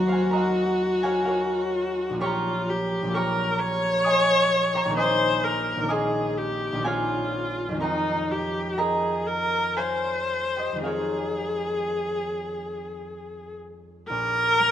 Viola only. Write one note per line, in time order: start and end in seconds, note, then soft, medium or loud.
0.00 2.19 F#4 medium
2.23 2.71 F4 medium
2.70 3.16 G4 medium
3.14 3.61 A#4 medium
3.60 4.97 C#5 medium
4.98 5.46 C5 medium
5.44 5.93 A#4 medium
5.92 6.39 G#4 medium
6.38 6.87 G4 medium
6.86 7.82 F4 medium
7.82 8.32 D#4 medium
8.31 8.80 G4 medium
8.79 9.28 G#4 medium
9.27 9.79 A#4 medium
9.77 10.83 C5 medium
10.84 13.52 G#4 medium
14.08 14.71 A#4 loud